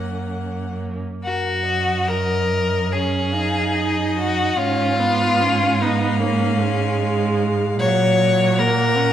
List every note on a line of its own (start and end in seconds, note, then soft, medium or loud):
0.00 0.99 F#2 medium
0.00 0.98 A#3 soft
0.00 1.03 C#4 medium
0.00 0.78 F#5 medium
1.23 4.55 F#2 medium
1.23 2.10 F#4 loud
1.23 1.64 A#4 medium
1.67 2.93 D#5 medium
2.08 2.94 A#4 loud
2.92 3.34 C#4 medium
2.92 4.18 G#4 loud
2.92 3.33 C#5 medium
3.32 4.58 D#4 medium
3.32 3.75 F5 medium
3.74 4.59 D#5 medium
4.17 4.58 F#4 loud
4.56 7.76 G#2 medium
4.56 5.01 C#4 medium
4.56 5.83 F4 loud
4.56 5.02 C#5 medium
4.99 5.42 B3 medium
4.99 7.80 F5 medium
5.41 5.83 C#4 medium
5.81 6.21 B3 medium
5.81 6.20 D#4 medium
6.20 6.62 A#3 medium
6.20 7.37 C#4 loud
6.61 7.79 G#3 medium
7.79 9.13 A#2 medium
7.79 8.60 F#3 medium
7.79 8.60 C#5 loud
7.79 8.19 F#5 medium
8.20 9.13 F#5 medium
8.58 8.98 A#3 medium
8.58 9.13 A#4 loud
8.96 9.13 C#4 medium